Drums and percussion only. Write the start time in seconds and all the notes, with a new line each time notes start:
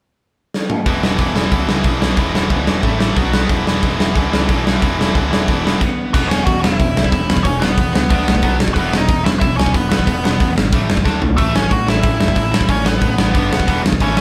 0.54 snare
0.70 mid tom
0.86 kick, open hi-hat
1.03 snare
1.18 kick, open hi-hat
1.36 snare
1.52 kick, open hi-hat
1.69 snare
1.84 kick, open hi-hat
2.02 snare
2.17 kick, open hi-hat
2.35 snare
2.50 kick, open hi-hat
2.67 snare
2.83 kick, open hi-hat
3.00 snare
3.17 kick, open hi-hat
3.33 snare
3.49 kick, open hi-hat
3.67 snare
3.83 kick, open hi-hat
4.00 snare
4.15 kick, open hi-hat
4.33 snare
4.49 kick, open hi-hat
4.67 snare
4.82 kick, open hi-hat
5.01 snare
5.15 kick, open hi-hat
5.33 snare
5.48 kick, open hi-hat
5.67 snare
5.81 kick, crash
6.14 kick, crash
6.31 snare
6.47 kick, open hi-hat
6.64 snare
6.80 kick, open hi-hat
6.97 snare
7.04 kick
7.12 kick, open hi-hat
7.30 snare
7.37 kick
7.45 kick, open hi-hat
7.62 snare
7.78 kick, open hi-hat
7.95 snare
8.10 kick, open hi-hat
8.28 snare
8.35 kick
8.42 kick, open hi-hat
8.60 snare
8.68 kick
8.76 kick, open hi-hat
8.93 snare
9.08 kick, open hi-hat
9.26 snare
9.41 kick, open hi-hat
9.60 snare
9.66 kick
9.74 kick, open hi-hat
9.92 snare
9.99 kick
10.07 kick, open hi-hat
10.25 snare
10.40 kick, open hi-hat
10.58 snare
10.72 kick, open hi-hat
10.90 snare
10.97 kick
11.05 kick, snare
11.22 floor tom
11.38 kick, open hi-hat
11.56 snare
11.71 kick, open hi-hat
11.88 snare
12.03 kick, open hi-hat
12.21 snare
12.28 kick
12.36 kick, open hi-hat
12.54 snare
12.61 kick
12.69 kick, open hi-hat
12.86 snare
13.01 kick, open hi-hat
13.18 snare
13.35 kick, open hi-hat
13.53 snare
13.60 kick
13.68 kick, open hi-hat
13.86 snare
13.92 kick
14.00 kick, open hi-hat
14.17 snare